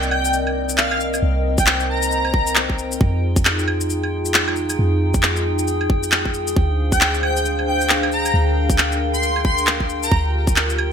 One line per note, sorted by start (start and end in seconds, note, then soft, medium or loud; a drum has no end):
0.00 1.21 C2 medium
0.00 2.97 C4 medium
0.00 2.97 A#4 medium
0.00 1.21 D5 medium
0.00 2.97 D#5 medium
0.00 10.93 G5 medium
0.00 shaker soft
0.10 0.35 G5 medium
0.10 claves medium
0.25 shaker medium
0.33 shaker soft
0.47 claves soft
0.69 shaker medium
0.77 1.01 F5 medium
0.77 clap loud
0.91 claves medium
1.00 shaker soft
1.14 claves soft
1.14 shaker medium
1.22 2.99 C2 medium
1.22 2.98 C5 medium
1.58 1.64 G5 medium
1.58 kick loud
1.58 shaker medium
1.67 1.76 G5 medium
1.67 clap loud
1.80 shaker soft
1.90 2.53 A#5 medium
2.02 shaker medium
2.11 shaker soft
2.25 claves soft
2.34 kick loud
2.47 shaker medium
2.56 clap loud
2.70 kick medium
2.78 shaker soft
2.92 shaker medium
3.00 4.77 F2 medium
3.00 6.52 D#4 medium
3.00 6.52 F4 medium
3.00 10.07 G#4 medium
3.00 kick loud
3.36 kick loud
3.36 shaker medium
3.45 clap loud
3.59 shaker soft
3.68 claves medium
3.81 shaker medium
3.90 shaker soft
4.03 claves soft
4.25 shaker medium
4.34 clap loud
4.48 claves medium
4.56 shaker soft
4.70 claves soft
4.70 shaker medium
4.79 6.55 F2 medium
5.14 kick loud
5.14 shaker medium
5.23 clap loud
5.36 shaker soft
5.59 shaker medium
5.68 shaker soft
5.81 claves soft
5.90 kick loud
6.03 shaker medium
6.12 clap loud
6.25 kick medium
6.34 shaker soft
6.47 shaker medium
6.56 8.32 D2 medium
6.56 10.08 D4 medium
6.56 8.32 C5 medium
6.56 10.09 F5 medium
6.56 kick loud
6.92 7.15 G5 medium
6.92 kick loud
6.92 shaker medium
7.01 clap loud
7.14 shaker soft
7.23 7.46 G5 medium
7.23 claves medium
7.37 shaker medium
7.45 shaker soft
7.59 claves soft
7.67 7.91 G5 medium
7.81 shaker medium
7.89 clap loud
8.03 claves medium
8.12 8.36 A#5 medium
8.12 shaker soft
8.25 claves soft
8.25 shaker medium
8.34 10.10 D2 medium
8.34 10.93 A#4 medium
8.70 kick loud
8.70 shaker medium
8.78 clap loud
8.92 shaker soft
9.13 9.37 C6 medium
9.13 shaker medium
9.23 shaker soft
9.36 claves soft
9.44 9.68 C6 medium
9.44 kick loud
9.58 shaker medium
9.67 clap loud
9.80 kick medium
9.89 shaker soft
10.03 10.17 A#5 loud
10.03 shaker medium
10.10 10.93 D2 medium
10.10 10.93 F4 medium
10.10 10.93 G4 medium
10.10 kick loud
10.47 kick loud
10.47 shaker medium
10.56 clap loud
10.70 shaker soft
10.78 claves medium